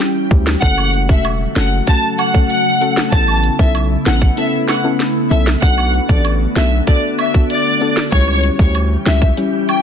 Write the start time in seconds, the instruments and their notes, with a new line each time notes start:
Already playing: ambient pad E3 G3 C#4 G4, synth pluck G3 C#4 E4 G4
0.00 snare, closed hi-hat
0.31 808-style bass D2, synth pluck G3 C#4 E4 G4, kick, closed hi-hat, cabasa
0.47 snare
0.62 808-style bass F#1, ambient pad C#3 F#3 A3 F#4, synth pluck A3 C#4 F#4 A4, violin section F#5, kick, closed hi-hat
0.78 high woodblock
0.93 closed hi-hat, cabasa
1.09 808-style bass E1, synth pluck A3 C#4 F#4 A4, violin section E5, kick
1.25 closed hi-hat, high woodblock
1.56 808-style bass F#1, synth pluck A3 C#4 F#4 A4, violin section F#5, snare, closed hi-hat, cabasa
1.87 synth pluck A3 C#4 F#4 A4, violin section A5, kick, closed hi-hat
2.18 violin section F#5, closed hi-hat, cabasa, high woodblock
2.34 synth pluck A3 C#4 F#4 A4, kick
2.50 violin section F#5, closed hi-hat
2.81 synth pluck A3 C#4 F#4 A4, closed hi-hat, cabasa
2.97 snare
3.12 808-style bass A1, synth pluck B3 C#4 E4 A4, ambient pad B3 E4, violin section A5, kick, closed hi-hat
3.28 high woodblock
3.44 closed hi-hat, cabasa
3.59 808-style bass B1, synth pluck B3 C#4 E4 A4, violin section E5, kick
3.75 closed hi-hat, high woodblock
4.06 808-style bass A1, synth pluck B3 C#4 E4 A4, violin section F#5, snare, closed hi-hat, cabasa
4.22 kick
4.37 synth pluck B3 C#4 E4 A4, violin section E5, closed hi-hat
4.68 violin section F#5, snare, closed hi-hat, cabasa, high woodblock
4.84 synth pluck B3 C#4 E4 A4
5.00 snare, closed hi-hat
5.31 808-style bass B1, synth pluck B3 C#4 E4 A4, violin section E5, closed hi-hat, cabasa
5.47 snare
5.62 808-style bass B1, ambient pad D3 F#4, synth pluck B3 D4 F#4 A4, violin section F#5, kick, closed hi-hat
5.78 high woodblock
5.94 closed hi-hat, cabasa
6.09 808-style bass A1, synth pluck B3 D4 F#4 A4, violin section D5, kick
6.25 closed hi-hat, high woodblock
6.55 808-style bass B1, synth pluck B3 D4 F#4 A4, violin section E5, snare, closed hi-hat, cabasa
6.87 synth pluck B3 D4 F#4 A4, violin section D5, kick, closed hi-hat
7.18 violin section E5, closed hi-hat, cabasa, high woodblock
7.34 synth pluck B3 D4 F#4 A4, kick
7.50 violin section D5, closed hi-hat
7.81 synth pluck B3 D4 F#4 A4, closed hi-hat, cabasa
7.97 snare
8.12 808-style bass C#2, ambient pad E3 G3 C#4 G4, synth pluck G3 C#4 E4 G4, violin section C#5, kick, closed hi-hat
8.28 high woodblock
8.44 closed hi-hat, cabasa
8.59 808-style bass D2, synth pluck G3 C#4 E4 G4, violin section C#5, kick
8.75 closed hi-hat, high woodblock
9.06 808-style bass C#2, synth pluck G3 C#4 E4 G4, violin section E5, snare, closed hi-hat, cabasa
9.22 kick
9.37 synth pluck G3 C#4 E4 G4, closed hi-hat
9.69 violin section G5, closed hi-hat, cabasa, high woodblock